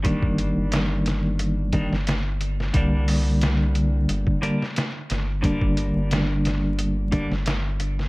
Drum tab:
HH |x-x-x-x-x-x-x-x-|x-o-x-x-x-x-x-x-|x-x-x-x-x-x-x-x-|
SD |----o-o----oo--o|----o------oo-o-|----o-o----oo--o|
BD |oo--------o-----|o--------o------|oo--------o-----|